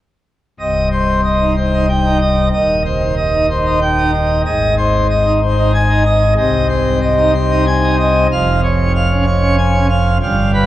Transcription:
0.60 C1 C2 D#5
0.92 C5
1.24 D#5
1.41 D#4
1.57 C5
1.74 D#4
1.89 G5
2.05 D#4
2.21 D#5
2.53 D#1 D#2 D#5
2.85 C5
3.17 D#5
3.34 D#4
3.51 C5
3.66 D#4
3.82 G5
3.97 D#4
4.13 D#5
4.45 G#1 G#2 D#5
4.78 C5
5.10 D#5
5.26 D#4
5.42 C5
5.58 D#4
5.74 G#5
5.90 D#4
6.06 D#5
6.38 C2 C3 D#5
6.70 C5
7.02 D#5
7.18 D#4
7.35 C5
7.51 D#4
7.67 G#5
7.84 D#4
7.99 D#5
8.32 F1 F2 F5
8.63 C#5
8.95 F5
9.11 C#4
9.27 C#5
9.42 C#4
9.58 G#5
9.73 C#4
9.89 F5
10.22 G1 G2 F5
10.54 B4

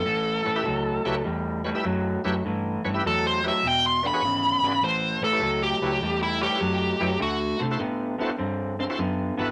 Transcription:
Already playing: A4
0.05 A1 A2 E3
0.45 A1 A2 E3 B4 C#5
0.56 E4 G4 B4 E5
0.65 C#2 A2 F#3
1.05 C#2 A2 F#3 E4 G4 B4 C#5
1.24 E2 A2 G3
1.64 A2 G3 B4 C#5
1.75 E4 G4 B4 E5
1.84 F#2 A2 F#3
2.24 F#2 A2 F#3 E4 G4 B4 C#5
2.45 G2 A2 E3
2.85 G2 A2 E3 B4 C#5
2.94 E4 G4 B4 E5
3.05 E2 A2 F#3 A4
3.27 C5
3.44 A2 F#3 E4 G4 B4 C#5
3.48 E5
3.63 E1 E2 B2
3.67 G5
3.86 C6
4.03 E2 D3 B4 D5
4.07 B5
4.14 F#4 G#4 B4 C#5
4.22 G#1 E2 C#3
4.62 G#1 E2 C#3 F#4 G#4 B4 D5
4.81 A1 A2 E3 C5
5.21 A1 A2 E3 A4 B4 C#5
5.32 E4 G4 B4 C#5
5.41 C#2 A2 F#3
5.63 G4
5.82 C#2 A2 F#3 E4 G4 B4 C#5
6.01 E2 A2 G3
6.23 E4
6.41 A2 G3 G4 B4 C#5
6.51 E4 G4 B4 C#5
6.60 F#2 A2 F#3
7.00 F#2 A2 F#3 E4 G4 B4 C#5
7.19 D2 D3 A3 F#4
7.59 C3 D3 A3 A4 C5
7.71 E4 F#4 A4 C5
7.79 A2 D3 B3
8.18 D3 B3 E4 F#4 A4 C5
8.38 G2 D3 C4
8.79 D3 C4 A4 C5
8.90 E4 F#4 A4 C5
8.99 F#2 D3 B3
9.37 G#1 D3 B3 E4 F#4 A4 B4

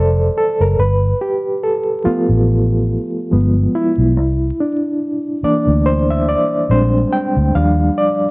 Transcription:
Already playing: F1 E3 G3 A3 A4 C5 D5 E5
0.38 A4
0.60 F#1 A#4
0.79 G1 B4
1.21 G4
1.63 A4
2.04 F3 A3 B3 F4, muted fingered electric bass stroke
2.29 A1
3.31 G1 F3 G#3 B3
3.75 E4
3.98 B1
4.17 C2
4.60 D4
5.43 E3 A#3 D4 D5, muted fingered electric bass stroke
5.67 D2
5.86 C5
6.11 E5
6.29 D5
6.70 A#1 G3 G#3 C4 D4 C5
7.13 G5
7.36 D2
7.55 D#2 F3 G3 D4 F5
7.98 D5

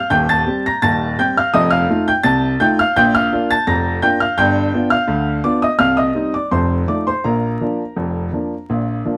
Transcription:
Already playing: F5 F6
0.10 D#1 D#2 G5 G6
0.29 A5 A6
0.46 G3 C4 G4
0.66 A#5 A#6
0.82 D#1 D#2 A5 A6
1.19 G3 C4 G4 G5 G6
1.37 F5 F6
1.54 F1 F2 D#5 D#6
1.71 F5 F6
1.89 A3 D#4 F4
2.08 G5 G6
2.23 C2 C3 A5 A6
2.60 A3 D#4 F4 G5 G6
2.79 F5 F6
2.96 A#1 A#2 G5 G6
3.15 F5 F6
3.33 A#3 D4 F4
3.50 A5 A6
3.67 F1 F2 A#5 A#6
4.02 A#3 D4 F4 G5 G6
4.20 F5 F6
4.38 G1 G2 G5 G6
4.74 B3 D4 F4
4.90 F5 F6
5.07 D2 D3
5.44 B3 D4 F4 D5 D6
5.62 D#5 D#6
5.79 C2 C3 F5 F6
5.97 D#5 D#6
6.15 G3 C4 D#4
6.34 D5 D6
6.51 F1 F2 C5 C6
6.88 F3 A3 D#4 D5 D6
7.07 C5 C6
7.24 A#1 A#2 A#4 A#5
7.61 F3 A#3 D4
7.96 F1 F2
8.33 F3 A#3 D4
8.69 A#1 A#2
9.05 F3 A#3 D4

